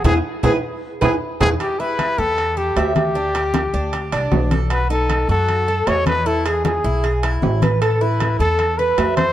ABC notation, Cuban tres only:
X:1
M:4/4
L:1/8
Q:1/4=154
K:Ephr
V:1 name="Cuban tres"
[E^GB] z [EGB] z2 [EGB] z [EGB] | G E2 G2 A e2 | D G2 D G D2 A | ^F ^D2 F2 A ^d2 |
E ^G2 E G E2 B | A E2 A2 B e2 |]